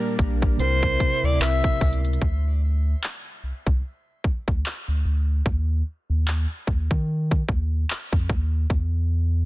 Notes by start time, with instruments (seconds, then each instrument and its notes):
Already playing: tine electric piano A#2 A#3 D4 G4, analog synth pad G3 A#3 D4, alto saxophone A#4
0.19 analog synth bass A#1, kick, closed hi-hat
0.42 kick
0.57 analog synth bass C2, tine electric piano C3 C4 E4, analog synth pad C3 E4, alto saxophone C5, closed hi-hat
0.62 tine electric piano A#4
0.83 kick
1.00 analog synth bass D2, kick, closed hi-hat
1.23 analog synth bass D2, alto saxophone D5
1.40 analog synth bass C2, alto saxophone E5, cross-stick, clap, closed hi-hat
1.64 kick
1.81 analog synth bass C#2, kick, closed hi-hat, open hi-hat
1.93 closed hi-hat
2.05 closed hi-hat
2.13 closed hi-hat
2.22 analog synth bass D2, kick
3.04 clap
3.43 analog synth bass C2
3.67 analog synth bass C2, kick
4.24 analog synth bass D2, kick
4.48 analog synth bass D2, kick
4.66 clap
4.88 analog synth bass D2
5.05 analog synth bass D2
5.46 analog synth bass D#2, kick
6.10 analog synth bass D#2
6.28 clap
6.67 analog synth bass D#2, kick
6.91 analog synth bass D#3, kick
7.31 kick
7.49 analog synth bass D#2, kick
7.90 clap
8.13 analog synth bass F2, kick
8.29 analog synth bass D#2, kick
8.70 analog synth bass E2, kick